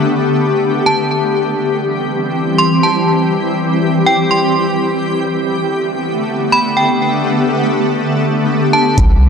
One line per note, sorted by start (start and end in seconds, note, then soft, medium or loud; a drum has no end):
0.00 1.07 D3 medium
0.00 1.07 A3 medium
0.00 1.07 B3 medium
0.00 8.94 G4 medium
0.86 1.10 A5 medium
1.11 5.00 E3 medium
1.11 5.00 G3 medium
1.11 5.00 C4 medium
2.58 2.82 C6 medium
2.83 3.07 A5 medium
4.06 4.30 G5 medium
4.31 4.54 C6 medium
5.04 8.94 D3 medium
5.04 8.94 A3 medium
5.04 8.94 B3 medium
6.52 6.75 B5 medium
6.77 7.00 G5 medium
8.73 8.97 A5 medium
8.98 9.29 C2 loud
8.98 9.29 E3 medium
8.98 9.29 G3 medium
8.98 9.29 C4 medium
8.98 9.29 G4 medium
8.98 kick loud
8.98 closed hi-hat medium